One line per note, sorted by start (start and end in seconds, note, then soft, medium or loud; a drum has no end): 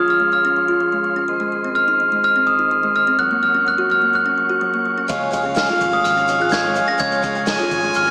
0.00 0.20 C#4 medium
0.00 0.44 F4 medium
0.00 1.24 G#4 medium
0.00 1.24 C#5 medium
0.00 1.24 F5 medium
0.00 1.26 C6 medium
0.08 0.31 F3 loud
0.08 0.32 F6 medium
0.20 0.68 G#3 medium
0.32 0.55 F3 medium
0.32 1.00 F6 medium
0.45 0.92 C#4 loud
0.56 0.79 F3 medium
0.68 1.16 F4 medium
0.80 1.03 F3 medium
0.92 1.28 G#3 medium
1.04 1.28 F3 medium
1.16 1.28 C#4 loud
1.28 1.51 D#3 medium
1.28 3.17 G#4 medium
1.28 3.17 C5 medium
1.28 3.17 D#5 medium
1.28 3.17 C6 medium
1.40 1.87 G#3 medium
1.52 1.75 D#3 medium
1.64 2.12 C4 medium
1.75 1.99 D#3 medium
1.75 2.23 F6 loud
1.88 2.35 D#4 loud
2.00 2.22 D#3 medium
2.12 2.59 G#3 medium
2.24 2.46 D#3 medium
2.24 2.48 F6 loud
2.36 2.83 C4 loud
2.47 2.70 D#3 medium
2.47 2.96 D#6 loud
2.59 3.06 D#4 medium
2.71 2.94 D#3 medium
2.83 3.19 G#3 medium
2.95 3.19 D#3 medium
2.95 3.20 F6 loud
3.07 3.19 C4 loud
3.19 3.42 F#3 medium
3.19 5.08 A#4 medium
3.19 8.11 C#5 medium
3.19 5.07 F#5 medium
3.19 5.07 C#6 medium
3.19 3.43 F#6 loud
3.31 3.78 A#3 medium
3.43 3.65 F#3 medium
3.43 3.67 F6 medium
3.55 4.02 C#4 medium
3.67 3.89 F#3 medium
3.67 3.89 F#6 loud
3.78 4.26 F#4 medium
3.90 4.12 F#3 medium
3.90 4.15 F6 loud
4.02 4.49 A#3 medium
4.13 4.36 F#3 medium
4.13 4.82 F#6 loud
4.26 4.73 C#4 loud
4.38 4.60 F#3 medium
4.49 4.97 F#4 medium
4.61 4.84 F#3 medium
4.74 5.09 A#3 medium
4.85 5.09 F#3 medium
4.98 5.09 C#4 medium
5.08 5.66 C#2 loud
5.08 5.32 C#3 medium
5.08 5.32 F3 medium
5.08 5.29 G#3 loud
5.08 5.30 C#4 medium
5.08 5.31 F4 loud
5.08 8.11 G#4 medium
5.08 5.32 G#4 medium
5.08 7.43 F5 medium
5.08 8.11 F5 medium
5.08 8.11 C#6 medium
5.08 kick loud
5.08 closed hi-hat medium
5.08 shaker loud
5.21 5.69 G#3 medium
5.31 5.56 F3 medium
5.31 5.44 G#3 medium
5.31 5.44 C#4 medium
5.31 5.43 F4 medium
5.31 5.42 G#4 medium
5.31 kick medium
5.31 closed hi-hat medium
5.31 shaker medium
5.43 5.54 C#4 soft
5.43 5.93 C#4 medium
5.43 5.55 F4 soft
5.43 5.55 G#4 medium
5.54 5.67 C#3 medium
5.54 5.80 F3 medium
5.54 5.68 G#3 medium
5.54 5.68 C#4 medium
5.54 5.68 F4 loud
5.54 5.66 G#4 medium
5.54 5.94 F6 medium
5.54 snare loud
5.54 closed hi-hat medium
5.54 shaker loud
5.67 5.92 C#4 soft
5.67 6.16 F4 medium
5.67 5.91 F4 soft
5.67 5.89 G#4 medium
5.67 snare soft
5.81 6.00 G#1 loud
5.81 6.04 F3 medium
5.81 kick medium
5.81 closed hi-hat medium
5.81 shaker medium
5.91 6.40 G#3 medium
5.91 6.16 C#4 soft
5.91 6.15 F4 medium
5.91 6.13 G#4 medium
5.91 6.05 D#6 medium
6.04 6.79 G#1 medium
6.04 6.27 F3 medium
6.04 6.41 F6 medium
6.04 closed hi-hat medium
6.04 shaker medium
6.15 6.64 C#4 medium
6.15 6.27 C#4 soft
6.15 6.28 F4 soft
6.15 6.27 G#4 soft
6.15 closed hi-hat soft
6.28 6.52 F3 medium
6.28 6.40 G#3 medium
6.28 6.40 C#4 medium
6.28 6.39 F4 medium
6.28 6.38 G#4 medium
6.28 closed hi-hat medium
6.28 shaker medium
6.39 6.49 C#4 soft
6.39 6.50 F4 medium
6.39 6.88 F4 medium
6.39 6.51 G#4 medium
6.39 6.53 F#6 loud
6.49 6.74 C#3 medium
6.49 6.75 F3 medium
6.49 6.73 G#3 medium
6.49 6.74 C#4 medium
6.49 6.75 F4 medium
6.49 6.76 G#4 medium
6.49 6.89 G#6 loud
6.49 snare loud
6.49 closed hi-hat medium
6.49 shaker medium
6.65 7.11 G#3 medium
6.74 6.99 F3 medium
6.74 6.87 G#3 medium
6.74 6.87 C#4 medium
6.74 6.87 F4 medium
6.74 6.85 G#4 medium
6.74 closed hi-hat medium
6.74 shaker medium
6.86 7.34 C#4 medium
6.86 6.98 C#4 soft
6.86 6.98 F4 medium
6.86 6.99 G#4 medium
6.86 7.00 A#6 loud
6.98 7.56 C#2 loud
6.98 7.22 C#3 medium
6.98 7.23 F3 loud
6.98 7.21 G#3 medium
6.98 7.21 C#4 medium
6.98 7.23 F4 loud
6.98 7.23 G#4 loud
6.98 7.98 G#6 loud
6.98 kick loud
6.98 closed hi-hat medium
6.98 shaker loud
7.12 7.59 G#3 medium
7.12 closed hi-hat soft
7.22 7.46 F3 medium
7.22 7.34 G#3 medium
7.22 7.35 C#4 medium
7.22 7.36 F4 medium
7.22 7.34 G#4 medium
7.22 kick loud
7.22 closed hi-hat medium
7.22 shaker medium
7.35 7.83 C#4 medium
7.35 7.46 C#4 soft
7.35 7.46 F4 medium
7.35 7.47 G#4 medium
7.35 closed hi-hat soft
7.46 7.58 C#3 medium
7.46 7.70 F3 medium
7.46 7.59 G#3 medium
7.46 7.59 C#4 medium
7.46 7.59 F4 medium
7.46 7.57 G#4 loud
7.46 8.11 G#5 loud
7.46 snare loud
7.46 closed hi-hat medium
7.46 shaker loud
7.58 7.82 C#4 medium
7.58 8.07 F4 medium
7.58 7.81 F4 medium
7.58 7.80 G#4 medium
7.58 closed hi-hat soft
7.71 7.90 G#1 medium
7.71 7.94 F3 medium
7.71 kick medium
7.71 closed hi-hat medium
7.71 shaker medium
7.81 8.11 G#3 medium
7.81 8.05 C#4 soft
7.81 8.04 F4 soft
7.81 8.03 G#4 medium
7.81 closed hi-hat soft
7.94 8.11 G#1 loud
7.94 8.11 F3 medium
7.94 8.11 F6 medium
7.94 closed hi-hat medium
7.94 shaker loud
8.04 8.11 C#4 soft
8.04 8.11 C#4 loud
8.04 8.11 F4 medium
8.04 8.11 G#4 medium